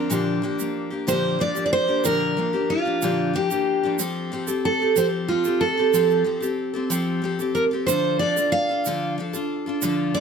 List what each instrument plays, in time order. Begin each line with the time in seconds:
Already playing: steel-string acoustic guitar C4 D4 A#4
0.10 steel-string acoustic guitar A#2 D3 F3 A#3 D4 G4, shaker
0.42 steel-string acoustic guitar F3 A#3 D4 G4
0.59 steel-string acoustic guitar F3 A#3 D4 G4, shaker
0.90 steel-string acoustic guitar F3 A#3 D4 G4
1.07 steel-string acoustic guitar A#2 D3 F3 A#3 D4 G4 C5, shaker
1.39 steel-string acoustic guitar F3 A#3 D4 G4 D5
1.55 steel-string acoustic guitar F3 A#3 D4 G4, shaker
1.66 steel-string acoustic guitar D5
1.73 steel-string acoustic guitar C5
1.87 steel-string acoustic guitar F3 A#3 D4 G4
2.04 steel-string acoustic guitar A#2 D3 F3 A#3 D4 G4 A#4, shaker
2.37 steel-string acoustic guitar F3 A#3 D4 G4
2.53 steel-string acoustic guitar F3 A#3 D4 G4
2.70 steel-string acoustic guitar F4
2.85 steel-string acoustic guitar F3 A#3 D4 G4
3.02 steel-string acoustic guitar A#2 D3 F3 A#3 D4 G4, shaker
3.33 steel-string acoustic guitar F3 A#3 D4 G4
3.50 steel-string acoustic guitar F3 A#3 D4 G4, shaker
3.83 steel-string acoustic guitar F3 A#3 D4 G4
3.99 steel-string acoustic guitar F3 C4 G4 A4, shaker
4.32 steel-string acoustic guitar F3 C4 G4 A4
4.47 steel-string acoustic guitar C4 G4 A4, shaker
4.65 steel-string acoustic guitar A4
4.80 steel-string acoustic guitar C4 G4 A4
4.96 steel-string acoustic guitar F3 C4 G4 A4 C5, shaker
5.28 steel-string acoustic guitar F3 C4 F4 G4 A4
5.44 steel-string acoustic guitar C4 G4 A4, shaker
5.61 steel-string acoustic guitar A4
5.77 steel-string acoustic guitar C4 G4 A4
5.94 steel-string acoustic guitar F3 C4 G4 A4, shaker
6.10 shaker
6.24 steel-string acoustic guitar F3 C4 G4 A4
6.40 steel-string acoustic guitar C4 G4 A4, shaker
6.74 steel-string acoustic guitar C4 G4 A4
6.90 steel-string acoustic guitar F3 C4 G4 A4, shaker
7.22 steel-string acoustic guitar F3 C4 G4 A4
7.39 steel-string acoustic guitar C4 G4 A4, shaker
7.55 steel-string acoustic guitar A#4, shaker
7.71 steel-string acoustic guitar C4 G4 A4
7.87 steel-string acoustic guitar D3 F3 D4 F4 A4 C5, shaker
8.19 steel-string acoustic guitar F3 D4 F4 A4 D5
8.36 steel-string acoustic guitar D4 F4 A4, shaker
8.52 steel-string acoustic guitar F5
8.69 steel-string acoustic guitar D4 F4 A4
8.85 steel-string acoustic guitar D3 F3 D4 F4 A4, shaker
9.18 steel-string acoustic guitar F3 D4 F4 A4
9.33 steel-string acoustic guitar D4 F4 A4, shaker
9.66 steel-string acoustic guitar D4 F4 A4
9.82 steel-string acoustic guitar D3 F3 D4 F4 A4, shaker
10.14 steel-string acoustic guitar F3 D4 F4 A4 D5